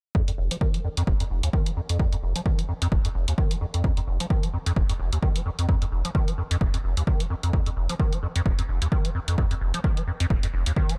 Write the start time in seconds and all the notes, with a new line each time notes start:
0.15 F2, kick
0.28 F2, closed hi-hat
0.38 F1
0.51 F3, closed hi-hat
0.61 D#3, kick
0.74 F3, closed hi-hat
0.84 F2
0.97 F2, closed hi-hat
1.07 F1, kick
1.20 F2, closed hi-hat
1.30 F1
1.43 D#2, closed hi-hat
1.53 D#3, kick
1.66 F3, closed hi-hat
1.77 F2
1.89 F2, closed hi-hat
2.00 kick
2.13 F2, closed hi-hat
2.23 F1
2.36 F3, closed hi-hat
2.46 D#3, kick
2.59 F3, closed hi-hat
2.69 F2
2.82 F2, closed hi-hat
2.92 F1, kick
3.05 F2, closed hi-hat
3.15 F1
3.28 D#2, closed hi-hat
3.38 D#3, kick
3.51 F3, closed hi-hat
3.61 F2
3.74 F2, closed hi-hat
3.84 F2, kick
3.97 F2, closed hi-hat
4.07 F1
4.20 F3, closed hi-hat
4.30 D#3, kick
4.43 F3, closed hi-hat
4.53 F2
4.66 F2, closed hi-hat
4.76 F1, kick
4.89 F2, closed hi-hat
4.99 F1
5.12 D#2, closed hi-hat
5.23 D#3, kick
5.36 F3, closed hi-hat
5.46 F2
5.59 F2, closed hi-hat
5.69 F2, kick
5.82 F2, closed hi-hat
5.92 F1
6.05 F3, closed hi-hat
6.15 D#3, kick
6.28 F3, closed hi-hat
6.38 F2
6.51 F2, closed hi-hat
6.61 F1, kick
6.74 F2, closed hi-hat
6.84 F1
6.97 D#2, closed hi-hat
7.07 D#3, kick
7.20 F3, closed hi-hat
7.30 F2
7.43 F2, closed hi-hat
7.53 F2, kick
7.66 F2, closed hi-hat
7.76 F1
7.89 F3, closed hi-hat
8.00 D#3, kick
8.13 F3, closed hi-hat
8.23 F2
8.36 F2, closed hi-hat
8.46 F1, kick
8.59 F2, closed hi-hat
8.69 F1
8.82 D#2, closed hi-hat
8.92 D#3, kick
9.05 F3, closed hi-hat
9.15 F2
9.28 F2, closed hi-hat
9.38 F2, kick
9.51 F2, closed hi-hat
9.61 F1
9.74 F3, closed hi-hat
9.84 D#3, kick
9.97 F3, closed hi-hat
10.07 F2
10.20 F2, closed hi-hat
10.30 F1, kick
10.43 F2, closed hi-hat
10.53 F1
10.66 D#2, closed hi-hat
10.76 D#3, kick
10.89 F3, closed hi-hat